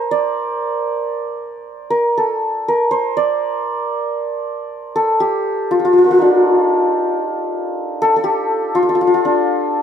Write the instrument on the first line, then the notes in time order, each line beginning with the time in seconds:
santur
Already playing: A#4 C5
0.11 D5
1.90 A#4
2.18 A4
2.68 A#4
2.91 C5
3.17 D5
4.96 A4
5.20 G4
5.71 F4
5.79 F4
5.85 F4
5.93 F4
5.98 F4
6.03 F4 A#4 C5
6.09 F4 G4 A4
6.14 F4
6.18 D4 D#4
8.02 A4
8.16 A4
8.24 G4
8.75 F4
8.83 F4
8.89 F4
8.95 F4
9.01 F4
9.07 F4
9.14 F4
9.25 D4